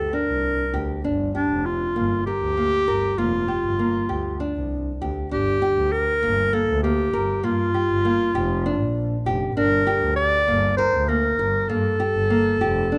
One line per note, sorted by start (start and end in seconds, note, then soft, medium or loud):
0.00 0.16 A4 medium
0.13 0.64 D4 medium
0.13 1.05 A#4 medium
0.28 0.52 C2 medium
0.73 0.86 D2 medium
0.73 0.99 G4 medium
1.04 1.40 G1 medium
1.04 1.30 D4 medium
1.35 1.67 D4 medium
1.35 1.86 G4 medium
1.50 1.74 F1 medium
1.65 2.26 F4 medium
1.96 2.20 G1 medium
1.96 2.21 A#3 medium
2.26 3.20 G4 loud
2.26 2.52 A#4 medium
2.41 2.66 D2 medium
2.57 2.82 A#3 medium
2.88 3.00 G1 medium
2.88 3.13 A#4 medium
3.18 3.42 F1 medium
3.18 3.43 A#3 medium
3.18 4.70 F4 medium
3.48 3.74 G4 medium
3.64 3.88 G1 medium
3.79 4.04 A#3 medium
4.09 4.34 D2 medium
4.09 4.35 G4 medium
4.40 4.91 D4 medium
4.56 4.79 C2 medium
5.02 5.13 D2 medium
5.02 5.27 G4 medium
5.31 5.68 G1 medium
5.31 5.57 D4 medium
5.31 5.94 G4 medium
5.62 6.12 G4 medium
5.77 6.01 D2 medium
5.92 6.55 A#4 medium
6.23 6.59 G1 medium
6.23 6.48 A#3 medium
6.53 6.78 A#3 medium
6.53 6.83 A4 loud
6.68 7.04 D2 medium
6.83 7.09 A#3 medium
6.83 7.46 G4 medium
7.13 7.38 G1 medium
7.13 7.39 A#4 medium
7.43 7.68 G2 medium
7.43 7.69 A#3 medium
7.43 9.27 F4 medium
7.74 8.00 G4 medium
7.90 8.14 G1 medium
8.05 8.30 A#3 medium
8.35 8.82 F1 medium
8.35 8.60 G4 medium
8.66 9.16 D4 medium
8.81 9.05 A#1 medium
9.26 9.50 F1 medium
9.26 9.52 G4 medium
9.56 9.92 G1 medium
9.56 9.82 D4 medium
9.56 10.13 A#4 medium
9.87 10.38 G4 medium
10.02 10.26 D2 medium
10.16 10.74 D5 loud
10.48 10.84 G1 medium
10.48 10.73 A#3 medium
10.77 11.04 A#4 medium
10.77 11.10 C5 medium
10.93 11.29 D2 medium
11.08 11.34 A#3 medium
11.08 11.70 A#4 medium
11.38 11.63 G1 medium
11.38 11.64 A#4 medium
11.69 11.93 G2 medium
11.69 11.95 A#3 medium
11.69 12.98 A4 medium
12.00 12.25 G4 medium
12.15 12.39 G1 medium
12.30 12.56 A#3 medium
12.60 12.98 F1 medium
12.60 12.86 G4 medium
12.92 12.98 D4 medium